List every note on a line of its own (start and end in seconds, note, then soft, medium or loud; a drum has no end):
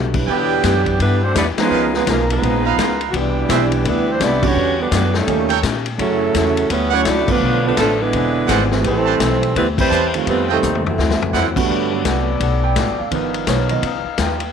0.00 0.24 B1 medium
0.00 0.14 B2 medium
0.00 0.14 D3 medium
0.00 0.14 G3 medium
0.00 0.16 G3 medium
0.00 0.14 A3 medium
0.00 0.14 B3 medium
0.00 0.17 B3 medium
0.00 0.17 F#4 soft
0.00 0.15 G4 medium
0.00 0.17 A4 medium
0.14 0.26 G3 soft
0.14 0.27 D4 soft
0.14 0.27 E4 soft
0.14 0.27 B4 medium
0.14 kick medium
0.14 crash medium
0.26 0.62 E2 medium
0.26 0.95 B2 medium
0.26 0.94 D3 medium
0.26 0.52 E3 soft
0.26 0.96 E3 medium
0.26 0.96 B3 medium
0.26 0.52 B3 soft
0.26 0.96 D4 medium
0.26 1.27 E4 medium
0.26 0.94 G4 medium
0.26 0.96 G4 medium
0.26 1.27 B4 medium
0.26 1.27 D5 medium
0.26 1.27 G5 loud
0.26 kick soft
0.30 0.53 D4 medium
0.30 0.53 G4 soft
0.63 0.98 F#2 medium
0.63 0.87 E3 medium
0.63 0.88 B3 soft
0.63 0.88 D4 soft
0.63 0.88 G4 medium
0.63 kick soft
0.63 snare medium
0.63 hi-hat pedal medium
0.63 ride medium
0.86 kick soft
0.86 ride soft
0.99 1.34 G2 medium
0.99 1.20 D3 medium
0.99 1.24 E3 soft
0.99 1.20 G3 medium
0.99 1.21 G3 medium
0.99 1.20 B3 medium
0.99 1.24 B3 soft
0.99 1.21 D4 medium
0.99 1.24 D4 soft
0.99 1.21 E4 medium
0.99 1.25 G4 soft
0.99 1.21 B4 loud
0.99 kick soft
0.99 ride medium
1.23 1.36 A3 medium
1.23 1.35 C4 medium
1.23 1.36 D4 medium
1.23 1.36 F#4 medium
1.23 1.36 C5 medium
1.35 1.56 E2 medium
1.35 1.59 E3 medium
1.35 1.45 G3 medium
1.35 1.45 B3 medium
1.35 1.59 B3 medium
1.35 1.46 B3 medium
1.35 1.45 D4 medium
1.35 1.60 D4 medium
1.35 1.46 E4 medium
1.35 1.46 G4 medium
1.35 1.60 G4 medium
1.35 1.46 D5 loud
1.35 kick soft
1.35 snare medium
1.35 hi-hat pedal medium
1.35 ride medium
1.57 1.91 F3 medium
1.57 2.04 F3 medium
1.57 1.91 G#3 medium
1.57 1.92 G#3 medium
1.57 1.91 B3 medium
1.57 2.04 B3 soft
1.57 2.04 C#4 medium
1.57 2.04 D#4 medium
1.57 1.92 D#4 medium
1.57 1.92 F4 medium
1.57 2.05 B4 medium
1.57 1.92 B4 loud
1.57 muted upright bass stroke soft
1.57 snare medium
1.57 ride medium
1.70 2.05 C#2 medium
1.70 1.95 C#3 soft
1.70 1.95 B3 soft
1.70 1.86 D#4 medium
1.70 1.96 F4 medium
1.70 1.86 A#4 medium
1.70 1.96 A#4 soft
1.70 1.86 B4 medium
1.70 1.86 F5 medium
1.94 2.06 F3 medium
1.94 2.06 G#3 medium
1.94 2.07 G#3 medium
1.94 2.06 B3 medium
1.94 2.07 D#4 medium
1.94 2.07 F4 medium
1.94 2.07 B4 medium
1.94 snare soft
2.06 2.41 B1 medium
2.06 2.28 B2 medium
2.06 2.30 C#3 soft
2.06 2.28 F3 medium
2.06 2.28 G#3 medium
2.06 2.28 A#3 medium
2.06 2.31 B3 medium
2.06 2.28 D#4 medium
2.06 2.31 F4 medium
2.06 2.28 F4 medium
2.06 2.28 A#4 medium
2.06 2.31 A#4 medium
2.06 kick soft
2.06 snare medium
2.06 hi-hat pedal medium
2.06 ride medium
2.30 2.97 F3 medium
2.30 2.97 G#3 medium
2.30 2.98 G#3 medium
2.30 2.97 B3 medium
2.30 2.98 D#4 medium
2.30 2.98 F4 medium
2.30 2.98 B4 medium
2.30 ride soft
2.42 2.77 A#1 medium
2.42 2.66 C#3 soft
2.42 2.67 B3 soft
2.42 2.67 F4 soft
2.42 2.67 A#4 soft
2.42 kick soft
2.42 ride medium
2.64 3.11 D#4 medium
2.64 3.11 B4 medium
2.64 3.11 F5 loud
2.64 3.11 A#5 medium
2.78 3.13 C#2 medium
2.78 3.02 C#3 medium
2.78 3.02 B3 medium
2.78 3.02 F4 medium
2.78 3.03 A#4 medium
2.78 kick soft
2.78 snare medium
2.78 hi-hat pedal medium
2.78 ride medium
3.01 ride soft
3.10 3.48 C2 medium
3.10 3.37 C3 soft
3.10 3.14 F#4 medium
3.10 kick soft
3.14 3.86 B2 medium
3.14 3.38 E3 soft
3.14 3.84 E3 medium
3.14 3.86 E3 medium
3.14 3.84 G3 medium
3.14 3.38 B3 soft
3.14 3.86 B3 medium
3.14 3.38 D4 soft
3.14 3.86 D4 medium
3.14 3.86 G4 medium
3.14 ride medium
3.48 3.84 B1 medium
3.48 3.73 C3 medium
3.48 3.73 E3 medium
3.48 3.70 E3 medium
3.48 3.73 B3 medium
3.48 3.70 B3 medium
3.48 3.70 C4 soft
3.48 3.64 D4 medium
3.48 3.73 D4 medium
3.48 3.70 D4 soft
3.48 3.70 G4 medium
3.48 3.64 B4 medium
3.48 3.64 C5 medium
3.48 3.64 E5 medium
3.48 kick soft
3.48 snare medium
3.48 hi-hat pedal medium
3.48 ride medium
3.72 ride soft
3.85 4.19 D2 medium
3.85 4.09 C3 soft
3.85 4.07 E3 medium
3.85 4.09 E3 soft
3.85 4.07 G3 medium
3.85 4.09 G3 medium
3.85 4.07 B3 medium
3.85 4.09 B3 soft
3.85 4.10 D4 medium
3.85 4.09 D4 medium
3.85 4.09 E4 medium
3.85 4.09 B4 loud
3.85 kick soft
3.85 ride medium
4.08 4.21 E3 medium
4.08 4.20 G3 medium
4.08 4.23 G3 medium
4.08 4.21 C4 medium
4.08 4.23 D4 medium
4.08 4.22 E4 medium
4.08 4.22 C5 medium
4.20 4.55 C2 medium
4.20 4.44 C3 medium
4.20 4.45 E3 medium
4.20 4.42 G3 medium
4.20 4.44 B3 medium
4.20 4.45 B3 medium
4.20 4.44 B3 medium
4.20 4.43 D4 medium
4.20 4.45 D4 medium
4.20 4.44 E4 medium
4.20 4.44 G4 medium
4.20 4.45 D5 loud
4.20 kick soft
4.20 snare medium
4.20 hi-hat pedal medium
4.20 ride medium
4.42 4.77 D3 medium
4.42 4.54 E3 medium
4.42 4.55 G3 medium
4.42 4.77 G3 medium
4.42 4.55 B3 medium
4.42 4.80 B3 medium
4.42 4.79 C#4 medium
4.42 4.55 D4 medium
4.42 4.55 F#4 medium
4.42 4.80 F#4 medium
4.42 kick medium
4.42 crash medium
4.46 4.80 G4 medium
4.46 4.80 C#5 loud
4.55 4.90 E2 medium
4.55 4.80 E3 soft
4.55 4.80 G3 soft
4.55 4.81 D4 soft
4.55 4.81 F#4 soft
4.78 4.90 D3 medium
4.78 4.90 G3 medium
4.78 4.92 G3 medium
4.78 4.90 B3 medium
4.78 4.92 D4 medium
4.78 4.92 F#4 medium
4.78 4.92 B4 medium
4.91 5.26 F#2 medium
4.91 5.12 D3 medium
4.91 5.15 E3 soft
4.91 5.13 G3 medium
4.91 5.16 G3 medium
4.91 5.14 G3 medium
4.91 5.12 B3 medium
4.91 5.16 D4 medium
4.91 5.14 D4 medium
4.91 5.16 F#4 medium
4.91 5.14 F#4 medium
4.91 5.14 B4 medium
4.91 kick soft
4.91 snare medium
4.91 hi-hat pedal medium
4.91 ride medium
5.14 5.56 A#2 medium
5.14 5.56 C#3 medium
5.14 5.58 G3 medium
5.14 5.56 A3 medium
5.14 5.58 C#4 medium
5.14 5.57 D#4 medium
5.14 5.58 A4 medium
5.14 snare medium
5.27 5.62 D#2 medium
5.27 5.51 D#3 soft
5.27 5.48 D#3 medium
5.27 5.48 A3 medium
5.27 5.52 A3 soft
5.27 5.48 A#3 medium
5.27 5.48 C#4 medium
5.27 5.52 C#4 soft
5.27 5.48 G4 medium
5.27 5.52 G4 soft
5.27 kick soft
5.27 ride medium
5.50 5.59 D#4 medium
5.50 5.59 A4 medium
5.50 5.59 C#5 medium
5.50 5.59 G5 loud
5.50 ride soft
5.62 5.98 A#2 medium
5.62 5.87 D#3 medium
5.62 5.87 A3 medium
5.62 5.87 C#4 medium
5.62 5.88 G4 medium
5.62 kick soft
5.62 snare medium
5.62 hi-hat pedal medium
5.62 ride medium
5.86 ride soft
5.98 6.33 F#2 medium
5.98 6.66 C#3 medium
5.98 6.22 D3 soft
5.98 6.66 F#3 medium
5.98 6.23 F#3 soft
5.98 6.67 F#3 medium
5.98 6.66 A3 medium
5.98 6.23 C#4 soft
5.98 6.67 C#4 medium
5.98 6.67 E4 medium
5.98 6.23 E4 soft
5.98 6.67 A4 medium
5.98 kick soft
5.98 ride medium
6.34 6.69 E2 medium
6.34 6.58 D3 soft
6.34 6.59 F#3 medium
6.34 6.59 C#4 medium
6.34 6.59 E4 medium
6.34 kick soft
6.34 snare medium
6.34 hi-hat pedal medium
6.34 ride medium
6.57 ride soft
6.69 7.04 D2 medium
6.69 6.94 D3 soft
6.69 6.94 F#3 soft
6.69 6.94 G3 medium
6.69 6.93 B3 medium
6.69 6.95 C#4 soft
6.69 6.94 C#4 medium
6.69 6.92 E4 medium
6.69 6.95 E4 soft
6.69 6.93 B4 medium
6.69 kick soft
6.69 ride medium
6.91 7.04 F#3 medium
6.91 7.04 A3 medium
6.91 7.05 A3 medium
6.91 7.06 C#4 medium
6.91 7.01 E4 medium
6.91 7.05 E4 medium
6.91 7.05 F#4 medium
6.91 7.01 C#5 medium
6.91 7.07 C#5 medium
6.91 7.01 D5 medium
6.91 7.01 F#5 loud
7.05 7.26 C#2 medium
7.05 7.30 D3 medium
7.05 7.28 F#3 medium
7.05 7.30 F#3 medium
7.05 7.28 A3 medium
7.05 7.30 C#4 medium
7.05 7.28 D4 medium
7.05 7.28 E4 medium
7.05 7.31 E4 medium
7.05 7.28 F#4 medium
7.05 7.28 D5 medium
7.05 kick soft
7.05 snare medium
7.05 hi-hat pedal medium
7.05 ride medium
7.28 7.62 D3 medium
7.28 7.75 D3 soft
7.28 7.63 F3 medium
7.28 7.75 F3 soft
7.28 7.75 A3 soft
7.28 7.65 A3 medium
7.28 7.63 B3 medium
7.28 7.75 B3 soft
7.28 7.65 D4 medium
7.28 7.75 F4 medium
7.28 7.65 F4 medium
7.28 7.65 B4 loud
7.28 muted upright bass stroke soft
7.28 kick medium
7.28 crash medium
7.40 7.76 B1 medium
7.40 7.66 B2 soft
7.40 7.66 F3 soft
7.40 7.67 A3 soft
7.45 7.67 D4 medium
7.64 7.75 D3 medium
7.64 7.75 F3 medium
7.64 7.78 A3 medium
7.64 7.76 B3 medium
7.64 7.78 D4 medium
7.64 7.78 F4 medium
7.64 7.78 B4 medium
7.76 8.12 A1 medium
7.76 8.02 B2 soft
7.76 7.97 D3 medium
7.76 7.98 F3 medium
7.76 8.02 F3 medium
7.76 7.99 F3 medium
7.76 7.98 A3 medium
7.76 8.02 A3 medium
7.76 7.99 B3 medium
7.76 7.99 D4 medium
7.76 7.92 F4 medium
7.76 7.99 A4 loud
7.76 7.92 B4 medium
7.76 7.92 D5 medium
7.76 7.92 A5 medium
7.76 kick soft
7.76 snare medium
7.76 hi-hat pedal medium
7.76 ride medium
7.80 8.03 D4 medium
7.99 8.71 D3 medium
7.99 8.71 G#3 medium
7.99 8.72 G#3 medium
7.99 8.71 B3 medium
7.99 8.72 D4 medium
7.99 8.72 E4 medium
7.99 8.72 B4 medium
8.13 8.47 E1 medium
8.13 8.37 E3 soft
8.13 8.38 C4 soft
8.13 8.38 D4 soft
8.13 8.38 G#4 soft
8.13 kick soft
8.13 ride medium
8.48 8.83 G#1 medium
8.48 8.72 E3 medium
8.48 8.73 C4 medium
8.48 8.73 D4 medium
8.48 8.63 E4 medium
8.48 8.73 G#4 medium
8.48 8.63 C5 medium
8.48 8.63 D5 medium
8.48 8.63 F#5 loud
8.48 kick soft
8.48 snare medium
8.48 hi-hat pedal medium
8.48 ride medium
8.71 9.18 E3 medium
8.71 9.18 A3 medium
8.71 9.18 C4 medium
8.71 9.18 G4 medium
8.71 9.18 B4 medium
8.71 snare medium
8.84 9.19 A1 medium
8.84 9.52 E3 medium
8.84 9.53 G3 medium
8.84 9.52 A3 medium
8.84 9.08 A3 medium
8.84 9.52 C4 medium
8.84 9.09 C4 soft
8.84 9.53 C4 medium
8.84 9.52 E4 medium
8.84 9.09 G4 medium
8.84 9.53 A4 medium
8.84 9.09 B4 medium
8.84 kick soft
8.84 ride medium
9.05 9.15 G4 medium
9.05 9.15 B4 medium
9.05 9.15 C5 medium
9.05 9.15 A5 medium
9.20 9.54 B1 medium
9.20 9.44 A3 medium
9.20 9.44 C4 medium
9.20 9.44 G4 medium
9.20 9.45 B4 medium
9.20 kick soft
9.20 snare medium
9.20 hi-hat pedal medium
9.20 ride medium
9.43 ride soft
9.55 9.90 D2 medium
9.55 9.66 E3 medium
9.55 9.66 G3 medium
9.55 9.79 A3 soft
9.55 9.66 B3 medium
9.55 9.80 C4 soft
9.55 9.67 C4 medium
9.55 9.67 E4 medium
9.55 9.80 G4 soft
9.55 9.67 B4 loud
9.55 9.81 B4 soft
9.55 kick soft
9.55 ride medium
9.77 10.10 E3 medium
9.77 10.11 G3 medium
9.77 10.12 G3 medium
9.77 10.11 C4 medium
9.77 10.12 E4 medium
9.77 10.12 B4 medium
9.77 10.12 C5 loud
9.77 kick medium
9.77 crash medium
9.90 10.25 E2 medium
9.90 10.15 A3 soft
9.90 10.15 C4 medium
9.90 10.06 G4 medium
9.90 10.16 G4 medium
9.90 10.06 B4 medium
9.90 10.16 B4 medium
9.90 10.06 C5 medium
9.90 10.06 A5 medium
9.90 hi-hat pedal medium
10.14 10.60 D#3 medium
10.14 10.60 G3 medium
10.14 10.60 A3 soft
10.14 10.60 C4 medium
10.14 10.61 F4 medium
10.14 ride soft
10.26 10.61 F2 medium
10.26 10.50 F3 soft
10.26 10.48 G3 medium
10.26 10.51 A3 medium
10.26 10.48 B3 medium
10.26 10.49 C4 medium
10.26 10.51 D#4 medium
10.26 10.49 D#4 medium
10.26 10.52 G4 soft
10.26 10.49 B4 medium
10.26 kick soft
10.26 ride medium
10.48 10.83 C3 medium
10.48 10.83 D#3 medium
10.48 10.84 G3 medium
10.48 10.83 A3 medium
10.48 10.83 C4 medium
10.48 10.83 D#4 medium
10.48 10.58 F4 medium
10.48 10.58 A4 medium
10.48 10.83 A4 medium
10.48 10.58 D#5 medium
10.48 10.58 G5 medium
10.62 10.97 D#2 medium
10.62 10.86 F3 medium
10.62 10.86 A3 medium
10.62 10.87 D#4 medium
10.62 10.87 G4 medium
10.62 hi-hat pedal medium
10.62 mid tom soft
10.75 floor tom medium
10.86 11.53 A2 medium
10.86 11.52 C3 medium
10.86 11.53 E3 medium
10.86 11.53 F#3 medium
10.86 11.53 A3 medium
10.86 11.53 C4 medium
10.86 11.53 E4 medium
10.86 floor tom medium
10.98 11.19 D2 medium
10.98 11.22 D3 soft
10.98 11.22 F#3 medium
10.98 11.23 C4 soft
10.98 11.23 E4 medium
10.98 snare medium
11.10 snare medium
11.20 muted upright bass stroke soft
11.20 floor tom medium
11.33 11.68 E2 medium
11.33 11.57 D3 medium
11.33 11.57 F#3 medium
11.33 11.58 C4 medium
11.33 11.49 E4 medium
11.33 11.58 E4 medium
11.33 11.48 C5 medium
11.33 11.48 D5 medium
11.33 11.48 F#5 loud
11.33 snare medium
11.33 hi-hat pedal medium
11.56 12.02 D3 medium
11.56 12.02 G3 medium
11.56 11.90 A3 medium
11.56 11.91 B3 medium
11.56 12.03 F#4 medium
11.56 kick medium
11.56 crash medium
11.69 12.04 G2 medium
11.69 11.93 G3 medium
11.69 13.10 B3 medium
11.69 11.93 B3 medium
11.69 14.51 D4 medium
11.69 11.94 F#4 soft
11.69 13.10 A4 medium
11.69 11.94 A4 medium
11.69 13.10 D5 medium
11.69 kick soft
11.92 13.08 F#3 soft
11.92 13.08 A3 soft
11.92 13.08 B3 soft
12.05 12.39 C2 medium
12.05 12.29 G3 medium
12.05 12.29 B3 soft
12.05 12.29 F#4 medium
12.05 12.30 A4 medium
12.05 12.60 F#5 medium
12.05 kick soft
12.05 snare medium
12.05 hi-hat pedal medium
12.05 ride medium
12.40 12.75 B1 medium
12.40 12.64 G3 soft
12.40 12.65 B3 soft
12.40 12.65 F#4 soft
12.40 12.65 A4 soft
12.40 kick soft
12.40 ride medium
12.64 12.96 G5 medium
12.76 12.87 A1 medium
12.76 13.00 G3 medium
12.76 13.00 B3 medium
12.76 13.00 F#4 medium
12.76 13.01 A4 medium
12.76 kick soft
12.76 snare medium
12.76 hi-hat pedal medium
12.76 ride medium
12.87 12.99 G1 medium
12.99 13.10 F#1 medium
12.99 13.44 F5 medium
13.10 13.46 G1 medium
13.10 13.35 G2 soft
13.10 13.66 D#3 soft
13.10 13.67 F3 soft
13.10 13.36 F3 soft
13.10 13.67 B3 soft
13.10 13.36 B3 soft
13.10 14.52 D#4 medium
13.10 14.52 B4 medium
13.10 14.52 F5 medium
13.10 kick soft
13.10 ride medium
13.15 13.37 D#4 soft
13.34 ride soft
13.47 13.81 B1 medium
13.47 13.71 G2 medium
13.47 13.71 F3 medium
13.47 13.72 B3 medium
13.47 13.72 D#4 medium
13.47 13.69 C#5 medium
13.47 kick soft
13.47 snare medium
13.47 hi-hat pedal medium
13.47 ride medium
13.69 13.82 D#3 soft
13.69 13.82 F3 soft
13.69 13.82 B3 soft
13.69 13.83 D#5 medium
13.69 ride soft
13.82 14.03 C#2 medium
13.82 14.06 G2 soft
13.82 14.07 F3 soft
13.82 14.07 B3 soft
13.82 14.08 D#4 medium
13.82 kick soft
13.82 ride medium
14.04 muted upright bass stroke soft
14.18 14.52 D#2 medium
14.18 14.42 G2 medium
14.18 14.42 F3 medium
14.18 14.43 B3 soft
14.18 14.43 D#4 medium
14.18 14.52 G5 medium
14.18 kick soft
14.18 snare medium
14.18 hi-hat pedal medium
14.18 ride medium
14.40 ride soft